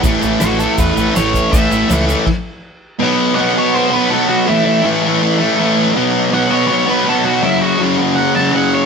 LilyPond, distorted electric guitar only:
\new Staff \with { instrumentName = "Distorted electric guitar" } { \clef bass \time 4/4 \key b \major \tempo 4 = 162 <a, e a>8 <e a>8 <a, e a>8 <e a>4 <e a>8 <a, e a>4 | <a, e a>8 <e a>8 <a, e a>8 <e a>8 r2 | <b, fis b>4 <b, fis b>8 <fis b>4 <fis b>8 <b, fis b>4 | <a, e a>4 <a, e a>8 <e a>4 <e a>8 <a, e a>4 |
<b, fis b>4 <b, fis b>8 <fis b>4 <fis b>8 <b, fis b>4 | <fis, cis fis>4 <fis, cis fis>8 <cis fis>4 <cis fis>8 <fis, cis fis>4 | }